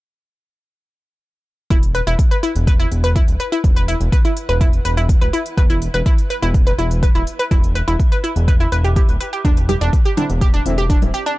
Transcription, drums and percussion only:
1.70 kick, closed hi-hat
1.83 closed hi-hat
1.95 closed hi-hat
2.07 closed hi-hat
2.19 kick, closed hi-hat
2.31 closed hi-hat
2.43 closed hi-hat
2.56 closed hi-hat
2.67 kick, closed hi-hat
2.80 closed hi-hat
2.92 closed hi-hat
3.04 closed hi-hat
3.16 kick, closed hi-hat
3.28 closed hi-hat
3.40 closed hi-hat
3.52 closed hi-hat
3.64 kick, closed hi-hat
3.77 closed hi-hat
3.88 closed hi-hat
4.01 closed hi-hat
4.12 kick, closed hi-hat
4.25 closed hi-hat
4.37 closed hi-hat
4.49 closed hi-hat
4.61 kick, closed hi-hat
4.73 closed hi-hat
4.85 closed hi-hat
4.97 closed hi-hat
5.09 kick, closed hi-hat
5.22 closed hi-hat
5.33 closed hi-hat
5.46 closed hi-hat
5.58 kick, closed hi-hat
5.70 closed hi-hat
5.82 closed hi-hat
5.94 closed hi-hat
6.06 kick, closed hi-hat
6.18 closed hi-hat
6.30 closed hi-hat
6.43 closed hi-hat
6.54 kick, closed hi-hat
6.67 closed hi-hat
6.79 closed hi-hat
6.91 closed hi-hat
7.03 kick, closed hi-hat
7.15 closed hi-hat
7.27 closed hi-hat
7.39 closed hi-hat
7.51 kick, closed hi-hat
7.64 closed hi-hat
7.75 closed hi-hat
7.88 closed hi-hat
7.99 kick, closed hi-hat
8.12 closed hi-hat
8.24 closed hi-hat
8.36 closed hi-hat
8.48 kick, closed hi-hat
8.60 closed hi-hat
8.72 closed hi-hat
8.84 closed hi-hat
8.96 kick, closed hi-hat
9.09 closed hi-hat
9.21 closed hi-hat
9.33 closed hi-hat
9.45 kick, closed hi-hat
9.57 closed hi-hat
9.69 closed hi-hat, low conga
9.81 closed hi-hat
9.93 kick, closed hi-hat
10.05 closed hi-hat
10.17 closed hi-hat, low conga
10.30 closed hi-hat
10.41 kick, closed hi-hat
10.54 closed hi-hat
10.66 closed hi-hat
10.78 closed hi-hat
10.90 kick, closed hi-hat
11.02 closed hi-hat, low conga
11.14 closed hi-hat
11.26 closed hi-hat

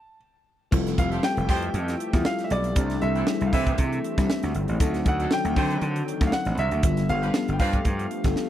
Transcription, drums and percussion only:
0.72 kick, crash
0.87 snare, closed hi-hat
0.98 kick, closed hi-hat
1.12 closed hi-hat
1.23 snare
1.37 closed hi-hat
1.49 kick, open hi-hat
1.62 closed hi-hat
1.74 closed hi-hat
1.88 snare, closed hi-hat
2.00 closed hi-hat
2.13 kick, snare, closed hi-hat
2.25 snare
2.39 snare, closed hi-hat
2.50 closed hi-hat
2.64 closed hi-hat
2.76 kick, closed hi-hat
2.90 snare, closed hi-hat
3.02 closed hi-hat
3.15 closed hi-hat
3.27 snare
3.41 closed hi-hat
3.53 kick, open hi-hat
3.67 kick, closed hi-hat
3.78 kick, closed hi-hat
3.92 closed hi-hat
4.04 closed hi-hat
4.18 kick, snare, closed hi-hat
4.30 snare
4.43 snare, closed hi-hat
4.55 closed hi-hat
4.68 closed hi-hat
4.80 kick, closed hi-hat
4.94 snare, closed hi-hat
5.06 kick, closed hi-hat
5.20 closed hi-hat
5.31 snare
5.45 closed hi-hat
5.56 kick, open hi-hat
5.70 closed hi-hat
5.81 closed hi-hat
5.96 closed hi-hat
6.08 closed hi-hat
6.21 kick, snare, closed hi-hat
6.32 snare
6.45 snare, closed hi-hat
6.58 closed hi-hat
6.71 closed hi-hat
6.83 kick, closed hi-hat
6.97 snare, closed hi-hat
7.09 closed hi-hat
7.23 closed hi-hat
7.34 snare
7.48 closed hi-hat
7.59 kick, open hi-hat
7.73 kick, closed hi-hat
7.85 kick, closed hi-hat
7.99 closed hi-hat
8.11 closed hi-hat
8.24 kick, snare, closed hi-hat
8.36 snare

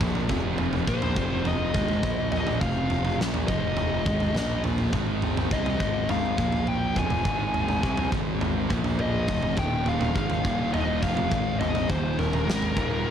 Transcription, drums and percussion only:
0.01 kick, floor tom
0.15 floor tom, mid tom
0.29 kick, floor tom
0.58 floor tom
0.73 floor tom
0.88 kick
1.02 floor tom
1.16 kick
1.45 floor tom
1.74 kick, floor tom
1.88 floor tom
2.03 kick, mid tom
2.32 floor tom
2.47 floor tom, mid tom
2.61 kick, floor tom
2.90 floor tom
3.05 floor tom
3.21 snare
3.34 floor tom
3.48 kick, mid tom
3.77 floor tom
4.06 kick, floor tom
4.20 floor tom
4.35 snare, mid tom
4.64 floor tom
4.78 floor tom, mid tom
4.93 kick, floor tom
5.22 floor tom
5.37 floor tom
5.51 kick
5.66 floor tom
5.80 kick
6.09 floor tom
6.38 kick, floor tom
6.52 floor tom
6.67 mid tom
6.96 kick, floor tom
7.10 floor tom, mid tom
7.25 kick, floor tom
7.54 floor tom
7.68 floor tom
7.83 kick
7.97 floor tom
8.12 kick
8.41 floor tom
8.70 kick, floor tom
8.84 floor tom
8.99 mid tom
9.28 kick, floor tom
9.43 floor tom, mid tom
9.57 kick, floor tom
9.86 floor tom
10.01 floor tom
10.16 kick
10.30 floor tom
10.45 kick
10.74 floor tom
11.02 kick, floor tom
11.17 floor tom
11.31 kick, mid tom
11.61 floor tom
11.75 floor tom, mid tom
11.90 kick, floor tom
12.19 floor tom
12.33 floor tom
12.50 snare
12.62 floor tom
12.77 kick, mid tom

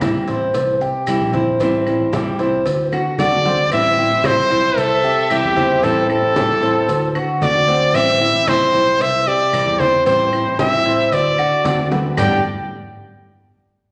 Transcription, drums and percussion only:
0.01 cowbell, high conga, claves, maracas
0.28 cowbell, high conga, maracas
0.54 cowbell, high conga, maracas
0.81 high conga, maracas
1.07 cowbell, high conga, claves, maracas
1.33 cowbell, high conga, maracas
1.60 cowbell, high conga, maracas
1.87 high conga, claves, maracas
2.13 cowbell, high conga, maracas
2.39 cowbell, high conga, maracas
2.66 cowbell, high conga, maracas
2.92 high bongo, high conga, claves, maracas
3.18 cowbell, low bongo, high conga, maracas
3.45 cowbell, low bongo, high conga, maracas
3.72 cowbell, high conga, claves, maracas
3.98 high conga, maracas
4.24 cowbell, high conga, claves, maracas
4.51 cowbell, high conga, maracas
4.77 cowbell, high conga, maracas
5.04 high conga, maracas
5.30 cowbell, high conga, claves, maracas
5.56 cowbell, high conga, maracas
5.83 cowbell, high conga, maracas
6.10 high conga, claves, maracas
6.36 cowbell, high conga, maracas
6.62 cowbell, high conga, maracas
6.89 cowbell, high conga, maracas
7.15 high conga, claves, maracas
7.42 cowbell, high conga, maracas
7.68 cowbell, high conga, maracas
7.94 cowbell, claves, maracas
8.21 high conga, maracas
8.47 cowbell, high conga, claves, maracas
8.74 cowbell, high conga, maracas
9.00 cowbell, high conga, maracas
9.27 high conga, maracas
9.53 cowbell, high conga, claves, maracas
9.80 cowbell, high conga, maracas
10.06 cowbell, high conga, maracas
10.33 high conga, claves, maracas
10.59 cowbell, high conga, maracas
10.86 cowbell, high conga, maracas
11.12 cowbell, high conga, maracas
11.38 high conga, claves, maracas
11.65 cowbell, high bongo, high conga, maracas
11.91 cowbell, low bongo, high conga, maracas
12.17 low bongo, low conga, claves, maracas

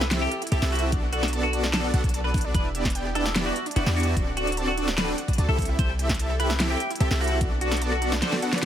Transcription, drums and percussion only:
0.01 snare
0.11 snare, closed hi-hat
0.32 closed hi-hat
0.42 closed hi-hat
0.47 closed hi-hat
0.52 closed hi-hat
0.62 snare
0.72 closed hi-hat, open hi-hat
0.79 closed hi-hat
0.92 kick, closed hi-hat
1.13 closed hi-hat
1.23 snare, closed hi-hat
1.28 closed hi-hat
1.33 closed hi-hat
1.53 closed hi-hat
1.64 snare
1.73 snare, closed hi-hat
1.94 closed hi-hat
2.04 kick, closed hi-hat
2.09 closed hi-hat
2.14 closed hi-hat
2.34 kick, closed hi-hat, open hi-hat
2.41 closed hi-hat
2.54 kick, closed hi-hat
2.75 closed hi-hat
2.85 kick, snare, closed hi-hat
2.90 closed hi-hat
2.95 closed hi-hat
3.15 closed hi-hat
3.26 snare
3.36 snare, closed hi-hat
3.56 closed hi-hat
3.66 closed hi-hat
3.71 closed hi-hat
3.76 closed hi-hat
3.86 snare
3.96 closed hi-hat, open hi-hat
4.03 closed hi-hat
4.17 kick, closed hi-hat
4.37 closed hi-hat
4.47 closed hi-hat
4.52 closed hi-hat
4.57 closed hi-hat
4.78 closed hi-hat
4.88 snare
4.98 snare, closed hi-hat
5.18 closed hi-hat
5.28 kick, closed hi-hat
5.33 closed hi-hat
5.38 closed hi-hat
5.59 kick, closed hi-hat, open hi-hat
5.65 closed hi-hat
5.79 kick, closed hi-hat
5.99 closed hi-hat
6.09 kick, snare, closed hi-hat
6.14 closed hi-hat
6.19 closed hi-hat
6.40 closed hi-hat
6.50 snare
6.60 snare, closed hi-hat
6.80 closed hi-hat
6.91 closed hi-hat
6.96 closed hi-hat
7.00 closed hi-hat
7.11 snare
7.21 closed hi-hat, open hi-hat
7.27 closed hi-hat
7.41 kick, closed hi-hat
7.61 closed hi-hat
7.72 snare, closed hi-hat
7.77 closed hi-hat
7.82 closed hi-hat
8.02 closed hi-hat
8.12 snare
8.22 snare, closed hi-hat
8.32 snare
8.42 closed hi-hat
8.53 snare, closed hi-hat
8.58 closed hi-hat

